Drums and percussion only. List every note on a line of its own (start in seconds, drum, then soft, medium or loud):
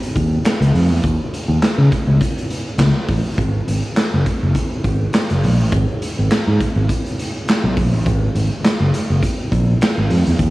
0.03 closed hi-hat medium
0.16 kick medium
0.16 closed hi-hat medium
0.45 snare loud
0.45 clap loud
0.45 closed hi-hat medium
0.62 closed hi-hat medium
0.75 open hi-hat medium
1.04 kick loud
1.04 closed hi-hat medium
1.34 closed hi-hat medium
1.63 snare medium
1.63 clap medium
1.63 closed hi-hat medium
1.92 kick medium
1.92 closed hi-hat medium
2.21 kick medium
2.21 closed hi-hat medium
2.38 closed hi-hat medium
2.50 closed hi-hat medium
2.78 snare loud
2.78 clap medium
2.78 closed hi-hat medium
3.09 kick loud
3.09 open hi-hat medium
3.38 kick loud
3.38 closed hi-hat medium
3.68 closed hi-hat medium
3.97 snare medium
3.97 clap medium
3.97 closed hi-hat medium
4.26 kick medium
4.26 closed hi-hat medium
4.55 kick medium
4.55 closed hi-hat medium
4.84 kick medium
4.84 closed hi-hat medium
5.13 snare loud
5.13 clap loud
5.13 closed hi-hat medium
5.30 closed hi-hat medium
5.44 open hi-hat medium
5.72 kick loud
5.72 closed hi-hat medium
6.02 closed hi-hat medium
6.32 snare loud
6.32 clap medium
6.32 closed hi-hat medium
6.61 kick medium
6.61 closed hi-hat medium
6.89 kick medium
6.89 closed hi-hat loud
7.06 closed hi-hat soft
7.19 closed hi-hat medium
7.48 snare loud
7.48 clap loud
7.48 closed hi-hat medium
7.77 kick loud
7.77 open hi-hat medium
8.06 kick loud
8.06 closed hi-hat medium
8.35 closed hi-hat medium
8.65 snare medium
8.65 clap medium
8.65 closed hi-hat medium
8.94 closed hi-hat medium
9.23 kick medium
9.23 closed hi-hat loud
9.52 kick medium
9.52 closed hi-hat medium
9.81 snare loud
9.81 clap loud
9.81 closed hi-hat medium
10.10 open hi-hat medium
10.26 closed hi-hat soft
10.39 kick loud
10.39 closed hi-hat medium